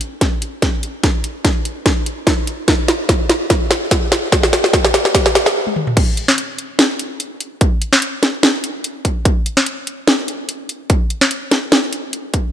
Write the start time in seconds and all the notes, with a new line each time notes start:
0.01 closed hi-hat
0.21 kick, snare, closed hi-hat
0.42 closed hi-hat
0.62 kick, snare, closed hi-hat
0.83 closed hi-hat
1.03 kick, snare, closed hi-hat
1.24 closed hi-hat
1.45 kick, snare, closed hi-hat
1.65 closed hi-hat
1.86 kick, snare, closed hi-hat
2.06 closed hi-hat
2.27 kick, snare, closed hi-hat
2.47 closed hi-hat
2.68 kick, snare, closed hi-hat
2.88 snare, closed hi-hat
3.09 kick, snare, closed hi-hat
3.30 snare, closed hi-hat
3.50 kick, snare, closed hi-hat
3.71 snare, closed hi-hat
3.91 kick, snare, closed hi-hat
4.12 snare, closed hi-hat
4.32 kick, snare, closed hi-hat
4.43 snare
4.53 snare, closed hi-hat
4.64 snare
4.73 kick, snare, closed hi-hat
4.85 snare
4.94 snare, closed hi-hat
5.05 snare
5.14 kick, snare, closed hi-hat
5.26 snare
5.35 snare, closed hi-hat
5.46 snare
5.67 high tom
5.76 mid tom
5.87 mid tom
5.97 kick, closed hi-hat, crash
6.17 closed hi-hat
6.28 snare
6.38 closed hi-hat
6.58 closed hi-hat
6.79 snare, closed hi-hat
6.99 closed hi-hat
7.20 closed hi-hat
7.40 closed hi-hat
7.61 kick, closed hi-hat
7.82 closed hi-hat
7.93 snare
8.02 closed hi-hat
8.23 snare, closed hi-hat
8.43 snare, closed hi-hat
8.64 closed hi-hat
8.84 closed hi-hat
9.05 kick, closed hi-hat
9.25 kick, closed hi-hat
9.46 closed hi-hat
9.57 snare
9.66 closed hi-hat
9.87 closed hi-hat
10.07 snare, closed hi-hat
10.28 closed hi-hat
10.49 closed hi-hat
10.69 closed hi-hat
10.90 kick, closed hi-hat
11.10 closed hi-hat
11.21 snare
11.31 closed hi-hat
11.51 snare, closed hi-hat
11.72 snare, closed hi-hat
11.93 closed hi-hat
12.13 closed hi-hat
12.34 kick, closed hi-hat